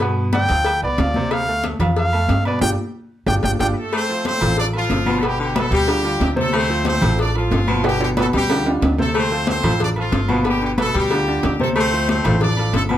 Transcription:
Already playing: upright bass G2
0.00 grand piano B2 B3 B4, cowbell, high conga, low agogo
0.17 high conga
0.33 grand piano D3 D4 D5, trumpet G5, cowbell, high conga, low timbale, low agogo
0.49 upright bass D2, grand piano F3 F4 F5, cowbell, high conga
0.65 cowbell, high conga, low agogo
0.82 upright bass C2, grand piano B3 B4 B5, trumpet D5, high conga
0.98 upright bass D2, grand piano F3 F4 F5, cowbell, high conga, low timbale, low agogo
1.14 grand piano C3 C4 C5, high conga
1.31 trumpet F5, cowbell, high conga, low agogo
1.48 grand piano A3 A4 A5, high conga
1.64 cowbell, high conga, low timbale, low agogo
1.79 upright bass F2, grand piano F3 F4 F5, cowbell, low conga, low agogo
1.96 trumpet F5, cowbell, high conga
2.13 grand piano A3 A4 A5, high conga, low agogo
2.28 upright bass G2, cowbell, high conga, low timbale, low agogo
2.45 grand piano B2 B3 B4, trumpet D5, low agogo
2.61 upright bass G1, grand piano D4 F4 G4, trumpet G5, cowbell, high conga, high timbale
3.26 upright bass G1, grand piano D4 F4 G4, trumpet G5, cowbell, high conga, high timbale
3.43 upright bass G1, grand piano D4 F4 G4, trumpet G5, cowbell, high conga, high timbale
3.59 upright bass G1, grand piano D4 F4 G4, trumpet G5, cowbell, high conga, high timbale
3.73 horn section B3 B4
3.78 horn section A3 A4
3.93 baritone saxophone A3, horn section C4 C5, cowbell, high conga, low agogo
4.09 grand piano F3 F4 A4, high conga
4.25 horn section C4 C5, cowbell, high conga, low timbale, low agogo
4.41 upright bass A1, grand piano F3 F4 A4, cowbell, low conga, low agogo
4.57 horn section D4 D5, cowbell, high conga
4.73 grand piano F3 F4 A4, horn section F3 F4, high conga, low agogo
4.90 upright bass G1, baritone saxophone D3, cowbell, high conga, low timbale, low agogo
5.06 grand piano B2 B3 B4, baritone saxophone F3, high conga, low agogo
5.19 grand piano B2 B3, horn section A3 A4, high conga, low agogo
5.23 horn section G3 G4, grand piano B4, cowbell
5.39 baritone saxophone D3, horn section G3 G4, high conga
5.55 grand piano B2 B3 B4, horn section A3 A4, cowbell, high conga, low timbale, low agogo
5.71 upright bass D2, baritone saxophone G3, horn section G3 G4, cowbell
5.87 grand piano D3 D4 F4, cowbell, high conga, low agogo
6.04 grand piano D3 D4 F4, high conga
6.20 upright bass D2, cowbell, high conga, low timbale, low agogo
6.36 grand piano C3 C4 C5, horn section A3, high conga
6.40 horn section A4
6.53 baritone saxophone A3, horn section C4 C5, cowbell, low agogo
6.69 grand piano F3 F4 A4, high conga
6.85 horn section C4 C5, cowbell, high conga, low timbale, low agogo
7.01 upright bass A1, grand piano F3 F4 A4, cowbell, low conga, low agogo
7.19 horn section D4 D5, cowbell
7.35 grand piano F3 F4 A4, horn section F3 F4, high conga, low agogo
7.51 upright bass G1, baritone saxophone D3, cowbell, high conga, low timbale, low agogo
7.67 grand piano B2 B3 B4, baritone saxophone F3, high conga, low agogo
7.84 grand piano B2 B3 B4, horn section G3 G4, cowbell, high conga, high timbale, low agogo
8.00 baritone saxophone D3, horn section G3 G4, high conga, high timbale
8.17 grand piano B2 B3 B4, horn section A3 A4, cowbell, high conga, high timbale, low agogo
8.33 upright bass D2, baritone saxophone G3, horn section G3 G4, cowbell, low timbale
8.50 grand piano D3 D4 F4, cowbell, high conga, low timbale, low agogo
8.66 grand piano D3 D4 F4, high conga, low timbale
8.82 upright bass D2, cowbell, high conga, low timbale, low agogo
8.98 grand piano C3 C4 C5, horn section A3 A4, high conga, low timbale
9.14 baritone saxophone A3, horn section C4 C5, cowbell, high conga, low agogo
9.31 grand piano F3 F4 A4, high conga
9.47 horn section C4 C5, cowbell, high conga, low timbale, low agogo
9.63 upright bass A1, grand piano F3 F4 A4, cowbell, low conga, low agogo
9.80 horn section D4 D5, cowbell, high conga, low conga
9.96 grand piano F3 F4 A4, horn section F3 F4, high conga, low agogo
10.12 upright bass G1, baritone saxophone D3, cowbell, high conga, low timbale, low agogo
10.28 grand piano B2 B3 B4, baritone saxophone F3, high conga, low agogo
10.44 grand piano B2 B3 B4, horn section G3 G4, cowbell, high conga, low agogo
10.62 baritone saxophone D3, horn section G3 G4, high conga
10.78 grand piano B2 B3 B4, horn section A3 A4, cowbell, high conga, low timbale, low agogo
10.94 upright bass D2, baritone saxophone G3, horn section G3, cowbell
10.98 horn section G4
11.10 grand piano D3 D4 F4, cowbell, high conga, low agogo
11.27 grand piano D3 D4 F4, high conga
11.43 upright bass D2, cowbell, high conga, low timbale, low agogo
11.60 grand piano C3 C4 C5, horn section A3 A4, high conga
11.76 baritone saxophone A3, horn section C4, cowbell, high conga, low agogo
11.80 horn section C5
11.92 grand piano F3 F4 A4, high conga
12.08 horn section C4 C5, cowbell, high conga, low timbale, low agogo
12.24 upright bass A1, grand piano F3 F4 A4, cowbell, low conga, low agogo
12.41 horn section D4 D5, cowbell, high conga, low conga
12.57 grand piano F3 F4 A4, high conga, low agogo
12.73 upright bass G1, baritone saxophone D3, horn section A3 A4, cowbell, high conga, low timbale, low agogo
12.89 grand piano B2 B3 B4, baritone saxophone F3, horn section G3 G4, high conga, low agogo

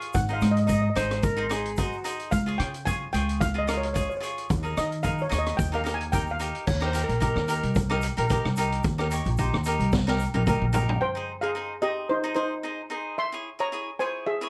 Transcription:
Already playing: cavaquinho F4 G#4 C#5, steel pan F5
0.01 closed hi-hat, shaker
0.13 upright bass G#1, steel pan F#5, kick, closed hi-hat, shaker
0.28 cavaquinho D#4 G#4 C5, shaker
0.33 steel pan F5
0.41 upright bass G#2, cross-stick, closed hi-hat, shaker
0.51 steel pan D#5
0.56 steel pan D#5, closed hi-hat, shaker
0.67 cavaquinho D#4 G#4 D#5, steel pan D#5, kick, closed hi-hat, shaker
0.74 steel pan D#5
0.82 steel pan D#5
0.90 steel pan D#5
0.96 upright bass G#1, cavaquinho D#4 G#4 C5, alto saxophone C5, cross-stick, closed hi-hat, shaker
1.11 cross-stick, closed hi-hat, shaker
1.23 alto saxophone A#4, kick, closed hi-hat, shaker
1.37 cavaquinho D#4 G#4 C5
1.49 cavaquinho D#4 G#4 C5, alto saxophone G#4, cross-stick, closed hi-hat, shaker
1.66 closed hi-hat
1.77 cavaquinho D#4 G#4 C5, alto saxophone F#4, kick, closed hi-hat, shaker
1.92 shaker
2.04 cavaquinho D#4 G#4 C5, closed hi-hat, shaker
2.20 closed hi-hat, shaker
2.31 upright bass C#2, steel pan F5, kick, closed hi-hat, shaker
2.46 cavaquinho F4 G#4 C#5, shaker
2.58 upright bass C#3, steel pan G5, cross-stick, closed hi-hat
2.74 closed hi-hat, shaker
2.85 cavaquinho F4 G#4 C#5, steel pan G#5, kick, closed hi-hat, shaker
3.13 upright bass C#2, cavaquinho F4 G#4 C#5, steel pan G5, closed hi-hat, shaker
3.29 closed hi-hat, shaker
3.41 steel pan F5, kick, closed hi-hat, shaker
3.54 cavaquinho F4 G#4 D#5
3.59 steel pan D#5
3.67 cavaquinho F4 G#4 A#4, cross-stick, closed hi-hat, shaker
3.77 steel pan C#5
3.83 steel pan C#5, closed hi-hat
3.93 cavaquinho F4 G#4 C#5, steel pan C#5, kick, closed hi-hat, shaker
4.01 steel pan C#5
4.09 steel pan C#5, shaker
4.17 cavaquinho F4, steel pan C#5
4.21 cavaquinho G#4 C#5, closed hi-hat, shaker
4.38 closed hi-hat, shaker
4.50 upright bass D#2, kick, closed hi-hat, shaker
4.63 cavaquinho D#4 G#4 A#4, shaker
4.77 upright bass D#3, steel pan D#5, cross-stick, closed hi-hat, shaker
4.92 closed hi-hat, shaker
5.03 cavaquinho D#4 G#4 A#4, steel pan F5, kick, closed hi-hat, shaker
5.18 steel pan C#5, shaker
5.29 upright bass D#2, cavaquinho D#4 G#4 C#5, cross-stick, closed hi-hat, shaker
5.38 steel pan D#5
5.46 cross-stick, closed hi-hat, shaker
5.57 upright bass D#2, steel pan G5, kick, closed hi-hat, shaker
5.72 cavaquinho D#4 G4 A#4, steel pan F5, shaker
5.84 cavaquinho D#4 G4 A#4, cross-stick, closed hi-hat, shaker
5.94 steel pan G#5
6.01 closed hi-hat
6.12 cavaquinho D#4 G4 A#4, steel pan G5, kick, closed hi-hat, shaker
6.31 steel pan F5
6.40 cavaquinho D#4 G4 A#4, closed hi-hat, shaker
6.55 closed hi-hat
6.67 upright bass D#2, alto saxophone C#5, kick, crash, shaker
6.81 cavaquinho D#4 G4 A#4, cross-stick
6.86 alto saxophone C5
6.93 cavaquinho D#4 G4 A#4, closed hi-hat, shaker
7.04 alto saxophone A#4
7.09 upright bass A#1, closed hi-hat, shaker
7.20 cavaquinho D#4 G4 A#4, kick, closed hi-hat, shaker
7.36 upright bass D#2, cross-stick
7.48 cavaquinho D#4 G4 A#4, closed hi-hat, shaker
7.63 upright bass C2, closed hi-hat, shaker
7.75 kick, closed hi-hat, shaker
7.90 cavaquinho D#4 G4 A#4, cross-stick
8.02 closed hi-hat, shaker
8.17 upright bass A#1, cavaquinho D#4 G4 A#4, closed hi-hat
8.29 cavaquinho D#4 G4 A#4, kick, closed hi-hat, shaker
8.45 upright bass C2, cross-stick
8.56 cavaquinho D#4 G4 A#4, closed hi-hat, shaker
8.72 closed hi-hat
8.83 upright bass D#2, kick, closed hi-hat, shaker
8.98 cavaquinho D#4 G4 A#4, cross-stick
9.11 cavaquinho D#4 G4 C#5, closed hi-hat, shaker
9.25 upright bass A#1, closed hi-hat, shaker
9.37 cavaquinho D#4 G4 C5, kick, closed hi-hat, shaker
9.53 upright bass D#2, cross-stick
9.64 cavaquinho D#4 G4 A#4, closed hi-hat, shaker
9.79 upright bass C2, closed hi-hat, shaker
9.92 kick, snare, shaker
10.07 cavaquinho D#4 G4 A#4, snare
10.20 shaker
10.34 upright bass A#1, cavaquinho D#4 G4 A#4, high tom
10.47 cavaquinho D#4 G4 A#4, kick, mid tom, shaker
10.62 upright bass A#1
10.73 cavaquinho D#4 G4 A#4, floor tom, shaker
10.89 floor tom
11.01 steel pan C5 G5
11.15 cavaquinho D#4 G#4 C5
11.41 cavaquinho D#4 G#4 C5, steel pan G#4 F5
11.55 cavaquinho D#4 G#4 C5
11.82 cavaquinho D#4 G#4 C5, steel pan G4 D#5
12.09 steel pan D#4 C5
12.24 cavaquinho D#4 G#4 C5
12.34 cavaquinho D#4 G#4 C5, steel pan D#4 C5
12.63 cavaquinho D#4 G#4 C5
12.90 cavaquinho D#4 G#4 C5
13.18 steel pan E5 C6
13.32 cavaquinho E4 G#4 C#5
13.59 cavaquinho E4 G#4 C#5, steel pan C#5 A#5
13.72 cavaquinho E4 G#4 C#5
13.99 cavaquinho E4 G#4 C#5, steel pan C5 G#5
14.27 steel pan G#4 E5
14.41 cavaquinho E4 G#4 C#5

